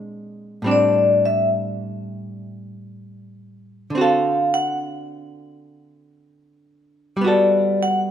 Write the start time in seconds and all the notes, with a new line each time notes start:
Already playing: A#2 G#3 C4 D4
0.62 A2 G3 C4
0.67 D4
0.71 D5
1.26 E5
3.90 D3
3.95 C4 F#4
4.01 A4 F5
4.54 F#5
7.17 G3
7.21 B3 F#4
7.27 A4 D5
7.83 F#5